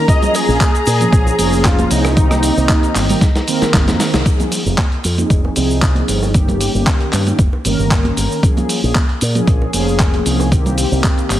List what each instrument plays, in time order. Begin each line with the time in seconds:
Already playing: string section A#5
0.08 analog polysynth F3 A#3 C#4 G#4, analog synth lead D#5, kick, closed hi-hat, cabasa, shaker
0.22 closed hi-hat, high conga, low conga, shaker
0.34 analog synth lead G#4, open hi-hat, cabasa, shaker
0.48 fingered electric bass A#1, analog polysynth F3 A#3 C#4 G#4, cabasa, shaker
0.60 kick, clap, closed hi-hat, high conga, cabasa, shaker
0.75 closed hi-hat, shaker
0.86 fingered electric bass A#2, analog synth lead G#4, open hi-hat, cabasa, shaker
0.99 analog polysynth F3 A#3 C#4 G#4, closed hi-hat, high conga, cabasa, shaker
1.12 fingered electric bass A#1, kick, closed hi-hat, cabasa, shaker
1.27 high bongo, shaker
1.38 fingered electric bass F1, analog polysynth F3 A#3 C#4 G#4, analog synth lead G#4, open hi-hat, high conga, cabasa, shaker
1.53 cabasa, shaker
1.65 analog synth lead F4, kick, cross-stick, clap, closed hi-hat, cabasa, shaker
1.79 closed hi-hat, high conga, shaker
1.91 fingered electric bass C2, analog synth lead D#4, open hi-hat, cabasa, shaker
2.05 cross-stick, high bongo, cabasa, shaker
2.16 analog polysynth D#3 A#3 C4 G4, kick, closed hi-hat, cabasa, shaker
2.31 cross-stick, closed hi-hat, high conga, low conga, shaker
2.43 open hi-hat, cabasa, shaker
2.56 fingered electric bass C2, analog polysynth D#3 A#3 C4 G4, high bongo, cabasa, shaker
2.69 kick, clap, closed hi-hat, high conga, cabasa, shaker
2.83 closed hi-hat, shaker
2.95 fingered electric bass G1, clap, open hi-hat, cabasa, shaker
3.09 analog polysynth D#3 A#3 C4 G4, open hi-hat, high conga, low conga, cabasa, shaker
3.21 kick, snare, closed hi-hat, cabasa, shaker
3.35 snare, closed hi-hat, high bongo, shaker
3.47 analog polysynth D#3 A#3 C4 A#4, open hi-hat, high conga, cabasa, shaker
3.61 muted fingered electric bass stroke, snare, closed hi-hat, cabasa, shaker
3.74 fingered electric bass G1, kick, snare, clap, closed hi-hat, cabasa, shaker
3.88 fingered electric bass F2, snare, closed hi-hat, high conga, shaker
4.00 snare, open hi-hat, cabasa, shaker
4.14 fingered electric bass C2, snare, closed hi-hat, cabasa, shaker
4.25 analog polysynth F3 C4 D#4 G#4, kick, closed hi-hat, cabasa, shaker
4.40 closed hi-hat, high conga, low conga, shaker
4.51 open hi-hat, cabasa, shaker
4.66 fingered electric bass F1, analog polysynth F3 C4 D#4 G#4, cabasa, shaker
4.78 kick, clap, closed hi-hat, high conga, cabasa, shaker
4.92 closed hi-hat
5.04 fingered electric bass F2, open hi-hat, cabasa, shaker
5.18 analog polysynth F3 C4 D#4 G#4, closed hi-hat, high conga, cabasa, shaker
5.30 fingered electric bass F1, kick, closed hi-hat, cabasa, shaker
5.45 high bongo
5.55 fingered electric bass C2, analog polysynth F3 C4 D#4 G#4, open hi-hat, high conga, cabasa, shaker
5.70 cabasa, shaker
5.82 kick, clap, closed hi-hat, cabasa, shaker
5.95 closed hi-hat, high conga
6.08 fingered electric bass G1, open hi-hat, cabasa, shaker
6.22 high bongo, cabasa, shaker
6.34 analog polysynth D#3 A#3 C#4 G4, kick, closed hi-hat, cabasa, shaker
6.48 closed hi-hat, high conga, low conga, shaker
6.61 open hi-hat, cabasa, shaker
6.74 fingered electric bass G1, analog polysynth D#3 A#3 C#4 G4, cabasa, shaker
6.87 kick, clap, closed hi-hat, high conga, cabasa, shaker
7.01 closed hi-hat
7.13 fingered electric bass G2, clap, open hi-hat, cabasa, shaker
7.26 analog polysynth D#3 A#3 C#4 G4, closed hi-hat, high conga, cabasa, shaker
7.39 fingered electric bass F1, kick, closed hi-hat, cabasa, shaker
7.53 high bongo
7.64 fingered electric bass G1, analog polysynth D#3 A#3 C#4 A#4, open hi-hat, high conga, cabasa, shaker
7.79 fingered electric bass G1, cabasa, shaker
7.91 kick, clap, closed hi-hat, shaker
8.05 closed hi-hat, high conga
8.17 fingered electric bass G1, open hi-hat, cabasa, shaker
8.32 cabasa, shaker
8.43 analog polysynth F3 A#3 C#4 G#4, kick, closed hi-hat, cabasa, shaker
8.57 closed hi-hat, high conga, low conga, shaker
8.69 open hi-hat, cabasa, shaker
8.83 fingered electric bass A#1, analog polysynth F3 A#3 C#4 G#4, cabasa, shaker
8.95 kick, clap, closed hi-hat, high conga, cabasa, shaker
9.09 closed hi-hat
9.21 fingered electric bass A#2, open hi-hat, cabasa, shaker
9.35 analog polysynth F3 A#3 C#4 G#4, closed hi-hat, high conga, cabasa, shaker
9.47 fingered electric bass A#1, kick, closed hi-hat, cabasa, shaker
9.62 high bongo
9.73 fingered electric bass F1, analog polysynth F3 A#3 C#4 G#4, open hi-hat, high conga, cabasa, shaker
9.88 cabasa, shaker
9.99 kick, clap, closed hi-hat, shaker
10.14 closed hi-hat, high conga
10.26 fingered electric bass C2, open hi-hat, cabasa, shaker
10.40 high bongo, cabasa, shaker
10.51 analog polysynth D#3 A#3 C4 G4, kick, closed hi-hat, cabasa, shaker
10.66 closed hi-hat, high conga, low conga, shaker
10.78 open hi-hat, cabasa, shaker
10.92 fingered electric bass C2, analog polysynth D#3 A#3 C4 G4, cabasa, shaker
11.04 kick, clap, closed hi-hat, high conga, cabasa, shaker
11.18 closed hi-hat, shaker
11.30 fingered electric bass G1, clap, open hi-hat, cabasa, shaker